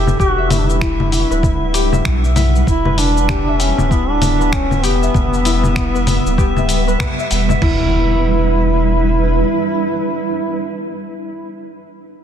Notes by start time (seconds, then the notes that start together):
Already playing: E1 G3 D4 E4 G4 B4 E5
0.07 low conga, shaker
0.20 E1 F#4 G4 F#5, kick, shaker
0.38 E5
0.51 E4, open hi-hat, low conga, shaker
0.59 D4
0.67 E4, shaker
0.81 E4, finger snap, kick, shaker
1.00 low conga
1.12 open hi-hat, shaker
1.31 D1 B4, shaker
1.43 kick, low conga, shaker
1.74 G4, open hi-hat, shaker
1.93 E5, low conga, shaker
2.05 B1, finger snap, kick, shaker
2.25 shaker
2.36 E4, open hi-hat, low conga, shaker
2.56 shaker
2.67 E1 B3 E4, kick, shaker
2.85 B4, low conga
2.98 D4, open hi-hat, shaker
3.17 shaker
3.29 G4, finger snap, kick, low conga, shaker
3.48 E5
3.60 C#4, open hi-hat, shaker
3.78 D1, low conga, shaker
3.91 B3 E4, kick, shaker
4.10 D4
4.22 open hi-hat, low conga, shaker
4.41 B4, shaker
4.53 C#4, finger snap, kick, shaker
4.71 low conga, shaker
4.83 E1 B3 G4, open hi-hat, shaker
5.02 E5, shaker
5.14 E1, kick, low conga, shaker
5.34 shaker
5.45 E4, open hi-hat, shaker
5.64 low conga, shaker
5.76 finger snap, kick, shaker
5.95 B4, shaker
6.07 open hi-hat, low conga, shaker
6.26 D1, shaker
6.38 G4, kick, shaker
6.57 E5, low conga, shaker
6.69 open hi-hat, shaker
6.88 B4, shaker
7.00 B4, finger snap, kick, low conga, shaker
7.19 E5, shaker
7.31 E1, open hi-hat, shaker
7.49 E5, low conga, shaker
7.62 E1 G3 D4 E4 B4, kick, floor tom, crash, impact